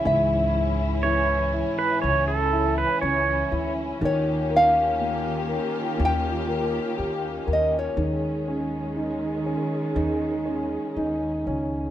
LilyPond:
<<
  \new Staff \with { instrumentName = "Nylon-string guitar" } { \time 4/4 \key cis \minor \tempo 4 = 60 e''2 r2 | cis''8 eis''4. g''4. dis''16 cis''16~ | cis''2. r4 | }
  \new Staff \with { instrumentName = "Pedal steel guitar" } { \time 4/4 \key cis \minor r4 cis''8. b'16 cis''16 a'8 b'16 cis''8. r16 | r1 | r1 | }
  \new Staff \with { instrumentName = "Grand piano" } { \time 4/4 \key cis \minor <gis, cis' e'>8 e'8 e8 e'4 e'8 cis'8 e'8 | dis8 ais'8 ais8 ais'8 ais8 ais'8 g'8 ais'8 | dis8 cis'8 dis'8 cis'8 dis'8 cis'8 dis'8 cis'8 | }
  \new Staff \with { instrumentName = "String section" } { \time 4/4 \key cis \minor <e cis' e'>1 | <dis ais eis' g'>1 | <dis gis>1 | }
  \new Staff \with { instrumentName = "Upright bass" } { \clef bass \time 4/4 \key cis \minor cis,2 cis,4 cis,8 d,8 | dis,2 dis,4 dis,8 dis,8 | dis,2 dis,4 dis,8 cis,8 | }
>>